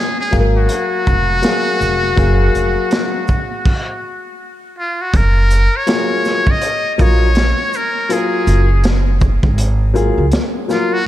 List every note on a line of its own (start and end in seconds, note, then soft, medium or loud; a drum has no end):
0.00 0.16 G#4 medium
0.20 0.36 G#4 medium
0.31 0.65 G#1 medium
0.31 1.37 F#3 medium
0.31 1.37 A#3 medium
0.31 0.41 G#4 medium
0.31 1.38 F5 medium
0.31 kick medium
0.31 snare soft
0.31 shaker medium
0.40 1.41 A#4 medium
0.57 4.37 F#4 medium
0.69 closed hi-hat medium
1.07 1.40 F1 medium
1.07 kick medium
1.07 shaker soft
1.42 2.15 F#3 medium
1.42 2.15 A#3 medium
1.42 2.17 G#4 medium
1.42 2.16 F5 medium
1.42 snare medium
1.42 closed hi-hat medium
1.81 2.13 F1 medium
1.81 shaker medium
2.16 2.50 F#1 loud
2.16 3.22 F#3 medium
2.16 3.22 A#3 medium
2.16 3.23 G#4 medium
2.16 3.23 F5 medium
2.16 kick medium
2.16 closed hi-hat medium
2.55 2.75 F1 medium
2.55 closed hi-hat soft
2.55 shaker medium
2.91 snare loud
2.91 closed hi-hat medium
3.28 kick medium
3.28 shaker soft
3.65 kick loud
3.65 crash medium
4.78 5.03 F4 medium
5.01 5.18 F#4 medium
5.13 5.66 F#1 medium
5.13 5.78 A#4 loud
5.13 kick loud
5.13 closed hi-hat medium
5.51 closed hi-hat medium
5.51 shaker medium
5.76 6.52 C#5 loud
5.87 6.42 F#3 medium
5.87 6.42 A#3 medium
5.87 6.43 F4 medium
5.87 6.43 G#4 medium
5.87 snare loud
5.87 closed hi-hat medium
6.25 snare soft
6.25 shaker soft
6.47 6.95 D#5 loud
6.47 kick medium
6.61 closed hi-hat loud
6.95 7.27 F#3 medium
6.95 7.27 A#3 medium
6.95 7.03 D#5 medium
6.95 closed hi-hat soft
6.95 shaker soft
6.99 7.51 A#1 medium
6.99 7.27 F4 medium
6.99 7.28 A#4 medium
6.99 7.78 C#5 loud
6.99 kick medium
7.35 snare medium
7.35 closed hi-hat medium
7.73 8.14 A#4 medium
7.73 shaker medium
8.09 8.64 F#3 medium
8.09 8.65 A#3 medium
8.09 8.65 F4 medium
8.09 8.85 G#4 medium
8.09 8.66 A#4 medium
8.09 closed hi-hat medium
8.47 9.39 F#1 loud
8.47 closed hi-hat medium
8.47 shaker medium
8.84 snare loud
8.84 closed hi-hat medium
9.21 kick medium
9.21 shaker medium
9.43 10.09 G#1 medium
9.43 kick medium
9.58 closed hi-hat medium
9.94 10.23 F#3 medium
9.94 10.23 A#3 medium
9.94 10.23 F4 medium
9.94 10.24 G#4 medium
9.94 closed hi-hat soft
9.94 shaker soft
10.18 10.31 C#2 medium
10.32 snare loud
10.32 closed hi-hat medium
10.68 10.97 F#3 medium
10.68 10.97 A#3 medium
10.68 10.98 F4 medium
10.68 10.95 F4 medium
10.68 10.98 A#4 medium
10.68 snare soft
10.68 shaker medium
10.93 11.07 F#4 medium